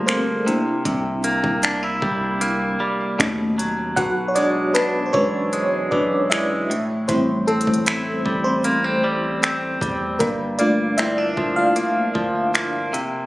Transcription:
Already playing: G1 G2 F3 G3 A3 A#3 D4 F4 G4 G#4 A4 A#4
0.06 A#3 C4 C5, finger snap, closed hi-hat
0.46 C3 A#3 D4 E4, closed hi-hat
0.85 C2 C3, kick, closed hi-hat
1.24 A#3, closed hi-hat
1.44 C2, kick
1.63 D4, finger snap, closed hi-hat
1.83 E4
2.02 C2 G3, kick
2.41 A#3, closed hi-hat
2.80 G3
3.19 D#2 B2 A3 C#4 D#4, finger snap, closed hi-hat
3.58 F#3, closed hi-hat
3.96 B1 B2 F#4 F#5, kick, closed hi-hat
4.28 C#5
4.35 G#3 D4 D5, closed hi-hat
4.74 B3 D4 B4, finger snap, closed hi-hat
5.06 C5
5.13 B1 E3 G#3 C#4 D4 F#4 C#5, kick
5.53 G#3, closed hi-hat
5.91 B1 E3 D4 D5, kick
6.30 G#3 E4 E5, finger snap, closed hi-hat
6.70 A2, closed hi-hat
7.08 A1 A2 G3 C4 E4 C5, kick, closed hi-hat
7.47 A3 C4 A4, closed hi-hat
7.61 closed hi-hat
7.67 A1, kick
7.74 closed hi-hat
7.86 E4, finger snap, closed hi-hat
8.26 A1 G3, kick
8.44 C4 C5
8.64 A#3, closed hi-hat
8.84 C4
9.04 G3
9.43 C4, finger snap, closed hi-hat
9.81 E2 G3, kick, closed hi-hat
10.19 G1 G2 A#3 A#4, kick, closed hi-hat
10.59 A3 A#3 D4 F4 D5, closed hi-hat
10.98 C4 E4 E5, finger snap, closed hi-hat
11.18 D4
11.37 G1 F3, kick
11.56 F4 F5
11.76 A#3, closed hi-hat
12.15 G1 F3, kick
12.54 A#3, finger snap, closed hi-hat
12.93 C3, closed hi-hat

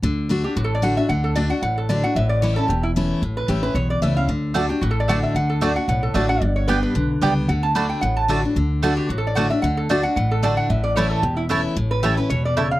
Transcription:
0.02 D2 D3
0.29 D3 A3 D4 F#4
0.43 D4 F#4 G4
0.56 A1 A2 F#4
0.64 A4
0.75 D5
0.82 D3 A3 D4 F#4 F#5
0.97 D4 F#4 E5
1.09 D2 D3 F#5
1.24 A4
1.35 D3 A3 D4 F#4 D5
1.50 D4 F#4 F#5
1.62 A1 A2 F#5
1.78 A4
1.89 D3 A3 D4 F#4 D5
2.04 D4 F#4 F#5
2.15 A1 A2 E5
2.29 D5
2.42 E3 A3 C#4 E4 C#5
2.56 C#4 E4 A4
2.68 E1 E2 G4
2.83 E4
2.96 E3 A3 C#4 E4
3.22 A1 A2
3.37 B4
3.48 A1 E3 A3 C#4 E4 G4
3.63 C#4 E4 B4
3.74 B1 E2 C#5
3.90 D5
4.02 C#2 E3 A3 C#4 E4 E5
4.17 C#4 E4 F5
4.28 D2 D3
4.54 D3 A3 D4 F#4 D5 A5
4.69 D4 F#4 G4
4.81 A1 A2 F#4
4.91 A4
5.00 D5
5.08 D3 A3 D4 F#4 D5 F#5 A5
5.23 E5
5.35 D2 D3 F#5
5.50 A4
5.61 D3 A3 D4 F#4 D5 A5
5.76 D4 F#4 F#5
5.88 B1 A2 F#5
6.03 A4
6.14 A1 D3 A3 D4 F#4 D5 A5
6.29 D4 F#4 F#5
6.41 G1 G2 D5
6.56 C#5
6.68 G3 B3 D4 G4 B4 D5 G5
6.83 B4
6.95 B1 D3
7.21 C#2 G3 B3 D4 G4 D5 G5
7.48 D2 D3 F#5
7.63 A5
7.75 D3 A3 D4 F#4 D5 A5 B5
7.89 G5
8.01 A1 A2 F#5
8.17 A5
8.28 D3 A3 D4 F#4 D5 A5
8.44 D4 F#4
8.56 D2 D3
8.82 D3 A3 D4 F#4 D5 A5
8.97 G4
9.09 A1 A2 F#4
9.18 A4
9.27 D5
9.35 D3 A3 D4 F#4 D5 F#5 A5
9.50 D4 F#4 E5
9.62 D2 D3 F#5
9.77 A4
9.89 D3 A3 D4 F#4 D5 A5
10.03 D4 F#4 F#5
10.16 A1 A2 F#5
10.31 A4
10.43 D3 A3 D4 F#4 D5 A5
10.57 F#5
10.70 A1 A2 E5
10.84 D5
10.96 E3 A3 C#4 E4 C#5 A5
11.11 A4
11.22 E1 E2 G4
11.37 E4
11.49 E3 A3 C#4 E4 C#5 A5
11.76 A1 A2
11.91 B4
12.03 E3 A3 C#4 E4 G4 C#5 A5
12.17 C#4 E4 B4
12.30 E1 B2 C#5
12.45 D5
12.57 C#3 A3 E4 C#5 E5 A5
12.71 F5

